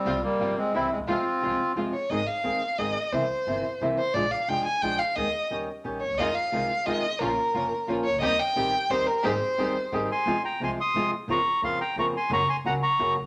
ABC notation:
X:1
M:3/4
L:1/16
Q:1/4=176
K:Fm
V:1 name="Bandoneon"
[G,C]2 [G,B,]4 [A,C]2 [C=E]2 [A,C]2 | [CF]8 z4 | [K:Ab] z12 | z12 |
z12 | z12 | z12 | z12 |
z12 | z8 z2 [ac']2- | [K:Fm] [ac']2 [gb]2 [ac']2 [c'e']4 z2 | [bd']4 [fc']2 [gb]2 [bd']2 [ac']2 |
[bd']2 [ac']2 [_gb]2 [bd']4 z2 |]
V:2 name="Violin"
z12 | z8 z2 d2 | [K:Ab] e2 f6 e4 | c8 z2 c2 |
=d2 f2 g2 a2 g2 f2 | e4 z6 d2 | e2 f6 e4 | B8 z2 d2 |
e2 g6 c2 B2 | c8 z4 | [K:Fm] z12 | z12 |
z12 |]
V:3 name="String section"
[G,CF]2 z2 [G,CF]2 z2 [G,C=E]2 z2 | [A,CF]2 z2 [A,CF]2 z2 [A,CF]2 z2 | [K:Ab] z12 | z12 |
z12 | z12 | [A,EF]2 z2 [A,EF]2 z2 [A,EF]2 z2 | [B,DF]2 z2 [B,DF]2 z2 [B,DF]2 z2 |
[CEG]2 z2 [CEG]2 z2 [CEG]2 z2 | [A,CG]2 z2 [A,CG]2 z2 [A,CG]2 z2 | [K:Fm] z12 | z12 |
z12 |]
V:4 name="Nylon-string guitar"
[C,F,G,CG] z3 [C,F,G,CG]2 z2 [C,=E,G,C=E]2 z2 | [C,F,A,CF] z3 [C,F,A,CF]2 z2 [C,F,A,CF]2 z2 | [K:Ab] [E,A,CEA] z3 [E,A,CEA]2 z2 [E,A,CEA]2 z2 | [C,=E,B,C=E] z3 [C,E,B,CE]2 z2 [C,E,B,CE]2 z2 |
[F,A,=DF] z3 [F,A,DF]2 z2 [F,A,DF]2 z2 | [E,A,C] z3 [E,G,DG]2 z2 [E,G,DG]2 z2 | [C,E,A,CF] z3 [C,E,A,CF]2 z2 [C,E,A,CF]2 z2 | [F,B,DF] z3 [F,B,DF]2 z2 [F,B,DF]2 z2 |
[E,G,CG] z3 [E,G,CG]2 z2 [E,G,CG]2 z2 | [E,G,CEA] z3 [E,G,CEA]2 z2 [E,G,CEA]2 z2 | [K:Fm] [C,F,A,CF] z3 [C,F,A,CF]2 z2 [C,F,A,CF]2 z2 | [D,F,B,CF] z3 [D,F,B,CF]2 z2 [D,F,B,CF]2 z2 |
[D,_G,B,D_G] z3 [D,G,B,DG]2 z2 [D,G,B,DG]2 z2 |]
V:5 name="Upright bass" clef=bass
C,,3/2 z2 z/2 G,,,3/2 z2 z/2 C,,3/2 z =D,,/2 E,,/2 =E,,/2 | F,,3/2 z2 z/2 C,,3/2 z2 z/2 F,,3/2 z2 z/2 | [K:Ab] A,,,3/2 z2 z/2 E,,3/2 z2 z/2 A,,,3/2 z2 z/2 | C,,3/2 z2 z/2 G,,,3/2 z2 z/2 C,,3/2 z2 z/2 |
B,,,3/2 z2 z/2 F,,,3/2 z2 z/2 B,,,3/2 z2 z/2 | E,,3/2 z2 z/2 E,,3/2 z2 z/2 B,,,3/2 z =D,,/2 E,,/2 _F,,/2 | F,,3/2 z2 z/2 C,,3/2 z2 z/2 F,,3/2 z2 z/2 | B,,,3/2 z2 z/2 F,,,3/2 z2 z/2 B,,,3/2 z C,,/2 D,,/2 =D,,/2 |
E,,3/2 z2 z/2 B,,,3/2 z2 z/2 E,,3/2 z2 z/2 | A,,,3/2 z2 z/2 E,,3/2 z2 z/2 A,,,3/2 z2 z/2 | [K:Fm] F,,3/2 z2 z/2 C,,3/2 z2 z/2 F,,3/2 z2 z/2 | F,,3/2 z2 z/2 F,,3/2 z2 z/2 F,,3/2 z2 z/2 |
_G,,,3/2 z2 z/2 D,,3/2 z2 z/2 G,,,3/2 z =A,,,/2 z |]